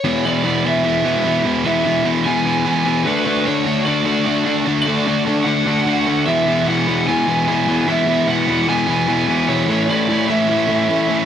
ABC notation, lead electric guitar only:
X:1
M:4/4
L:1/8
Q:1/4=149
K:Emix
V:1 name="Lead electric guitar"
c d2 e4 z | e2 z g4 B- | B c2 d4 z | d2 z f4 e- |
e f2 g4 e- | e f2 g4 c- | c d2 e4- e |]